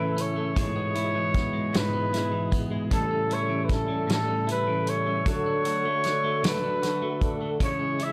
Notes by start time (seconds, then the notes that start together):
Already playing: A2 C#3 E3 A3 C#4 E4 A4 B4
0.00 A3 C#4
0.17 C#4, closed hi-hat
0.21 C#5
0.36 A3 C#4 E4 A4
0.55 G#2 B2 G#3 B3 E4 G#4, kick, closed hi-hat
0.61 C#5
0.76 B3
0.95 G#3 B3 E4 G#4, closed hi-hat
1.14 E3 B3 E4 G#4
1.34 B3, kick, snare, closed hi-hat
1.53 G#3 B3 E4 G#4
1.73 G#2 G#3 B3 E4 G#4, snare, closed hi-hat
1.77 B4
1.93 B3
2.12 G#3 B3 E4 G#4, snare, closed hi-hat
2.31 E3 B3 G#4
2.52 B3, kick, closed hi-hat
2.70 G#3 B3 E4 G#4
2.91 A2 C#3 E3 G3 A3 C#4 E4 A4, kick, closed hi-hat
2.95 A4
3.11 C#4
3.29 G3 A3 C#4 E4 A4, closed hi-hat
3.33 C#5
3.49 E3 G3 A3 C#4 A4
3.65 B4
3.69 C#4, kick, snare, closed hi-hat
3.73 A4
3.88 G3 A3 C#4 A4
4.07 A2 E3 G3 A3 C#4 A4, snare, closed hi-hat
4.12 A4
4.28 C#4
4.47 G3 A3 C#4 E4 A4, closed hi-hat
4.51 B4
4.67 E3 G3 A3 C#4 A4
4.87 C#4 C#5, closed hi-hat
5.05 G3 A3 C#4 A4
5.26 D3 F#3 A3 F#4 A4 C#5, kick, closed hi-hat
5.46 D4
5.64 F#3 A3 F#4 A4, closed hi-hat
5.84 A3 F#4 A4
6.04 D4, snare, closed hi-hat
6.23 A3 F#4 A4
6.43 D3 F#3 A3 F#4 A4, snare, closed hi-hat
6.47 B4
6.64 D4
6.81 F#3 A3 F#4 A4, snare, closed hi-hat
7.01 A3 F#4 A4
7.21 D4, kick, closed hi-hat
7.40 A3 F#4 A4
7.60 C#3 E3 G#3 C#4 E4 G#4 C#5, kick, closed hi-hat
7.79 C#4
7.99 E3 C#4 E4 G#4, closed hi-hat
8.04 E5